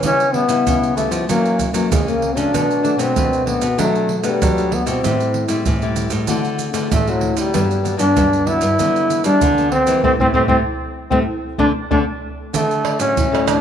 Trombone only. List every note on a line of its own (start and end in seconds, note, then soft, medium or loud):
0.05 0.36 C#4 loud
0.34 0.96 B3 medium
0.97 1.11 A3 medium
1.30 1.62 A#3 medium
1.92 2.11 G#3 medium
2.10 2.38 A#3 medium
2.37 3.03 D4 medium
3.01 3.49 C4 medium
3.48 3.79 B3 medium
3.81 4.17 A3 medium
4.19 4.27 A3 medium
4.26 4.75 G3 medium
4.74 4.88 B3 medium
4.88 5.47 C4 medium
6.93 7.12 A3 medium
7.10 7.38 F#3 medium
7.39 7.97 G3 medium
8.00 8.50 D4 medium
8.48 9.25 E4 loud
9.25 9.69 D4 loud
9.72 10.01 C4 loud
10.05 10.12 C4 medium
10.20 10.28 C4 medium
10.33 10.41 C4 loud
10.48 10.57 C4 loud
11.11 11.19 C4 medium
11.59 11.67 D4 medium
11.91 11.99 D4 medium
12.55 12.99 A3 medium
13.01 13.50 C#4 medium
13.48 13.61 D4 medium